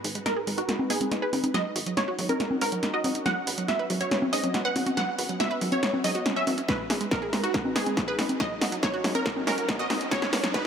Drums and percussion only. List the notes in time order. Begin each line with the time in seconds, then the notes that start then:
0.04 open hi-hat
0.15 closed hi-hat
0.26 snare, closed hi-hat
0.47 open hi-hat
0.58 closed hi-hat
0.69 snare, closed hi-hat
0.79 high conga
0.90 open hi-hat
1.01 closed hi-hat, high conga
1.12 snare, closed hi-hat
1.33 open hi-hat, high conga
1.44 closed hi-hat, high conga
1.54 snare, closed hi-hat
1.76 open hi-hat
1.86 closed hi-hat
1.97 snare, closed hi-hat
2.19 open hi-hat
2.29 closed hi-hat, high conga
2.40 snare, closed hi-hat
2.51 high conga
2.61 open hi-hat
2.72 closed hi-hat
2.83 snare, closed hi-hat
3.04 open hi-hat, high conga
3.15 closed hi-hat
3.26 snare, closed hi-hat
3.47 open hi-hat
3.58 closed hi-hat
3.68 snare, closed hi-hat
3.90 open hi-hat
4.01 closed hi-hat
4.11 snare, closed hi-hat
4.22 high conga
4.33 open hi-hat
4.44 closed hi-hat, high conga
4.54 snare, closed hi-hat
4.76 open hi-hat, high conga
4.86 closed hi-hat, high conga
4.97 snare, closed hi-hat
5.19 open hi-hat
5.29 closed hi-hat
5.40 snare, closed hi-hat
5.61 open hi-hat
5.72 closed hi-hat, high conga
5.83 snare, closed hi-hat
5.94 high conga
6.04 open hi-hat
6.15 closed hi-hat
6.26 snare, closed hi-hat
6.47 open hi-hat, high conga
6.58 closed hi-hat
6.68 kick, snare, closed hi-hat
6.90 snare, open hi-hat
7.01 closed hi-hat
7.11 kick, snare, closed hi-hat
7.33 snare, open hi-hat
7.44 closed hi-hat
7.54 kick, snare, closed hi-hat
7.65 high conga
7.76 snare, open hi-hat
7.86 closed hi-hat, high conga
7.97 kick, snare, closed hi-hat
8.19 snare, open hi-hat, high conga
8.29 closed hi-hat, high conga
8.40 kick, snare, closed hi-hat
8.61 snare, open hi-hat
8.72 closed hi-hat
8.83 kick, snare, closed hi-hat
9.04 snare, open hi-hat
9.15 closed hi-hat, high conga
9.26 kick, snare, closed hi-hat
9.36 high conga
9.47 snare, open hi-hat
9.58 closed hi-hat
9.69 kick, snare, closed hi-hat
9.90 snare, open hi-hat, high conga
10.01 closed hi-hat
10.11 kick, snare, closed hi-hat
10.22 snare
10.33 snare, open hi-hat
10.44 snare, closed hi-hat
10.54 kick, snare, closed hi-hat